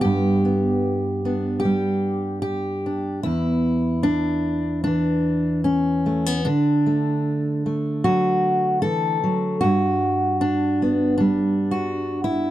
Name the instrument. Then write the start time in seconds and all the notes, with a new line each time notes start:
steel-string acoustic guitar
Already playing: G3 B3
0.01 G2 G4
0.45 B3
1.25 B3 D4
1.60 G4
1.65 G3
2.42 G4
2.86 D4
3.23 E2 E4
4.03 D4
4.84 E3 D4
5.64 C#4
6.06 A3
6.26 B3
6.45 D3 D4
6.86 A3
7.66 A3
8.04 F#3 F#4
8.82 E3 A4
9.24 F#3
9.61 G2 F#4
10.41 D4
10.82 B3
11.18 G3 D4
11.71 F#4
12.24 E4